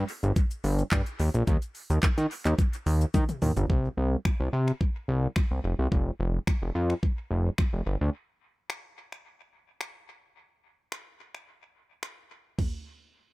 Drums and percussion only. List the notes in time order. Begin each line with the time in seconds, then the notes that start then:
0.09 open hi-hat, shaker
0.23 closed hi-hat, shaker
0.36 kick, closed hi-hat, shaker
0.51 closed hi-hat, shaker
0.64 open hi-hat, shaker
0.79 closed hi-hat, shaker
0.91 kick, clap, closed hi-hat, shaker
1.06 closed hi-hat, shaker
1.19 open hi-hat, shaker
1.34 closed hi-hat, shaker
1.47 kick, closed hi-hat, shaker
1.62 closed hi-hat, shaker
1.75 open hi-hat, shaker
1.90 closed hi-hat, shaker
2.03 kick, clap, closed hi-hat, shaker
2.18 closed hi-hat, shaker
2.31 open hi-hat, shaker
2.45 clap, closed hi-hat, shaker
2.59 kick, closed hi-hat, shaker
2.73 closed hi-hat, shaker
2.86 open hi-hat, shaker
3.01 closed hi-hat, shaker
3.14 kick, closed hi-hat, high tom, shaker
3.29 closed hi-hat, mid tom, shaker
3.42 mid tom, open hi-hat, shaker
3.57 closed hi-hat, floor tom, shaker
3.70 kick
4.25 finger snap, kick
4.68 finger snap
4.81 kick
5.36 finger snap, kick
5.92 kick
6.47 finger snap, kick
6.90 finger snap
7.03 kick
7.58 finger snap, kick
8.70 finger snap
9.12 finger snap
9.81 finger snap
10.92 finger snap
11.35 finger snap
12.03 finger snap
12.59 kick, floor tom, crash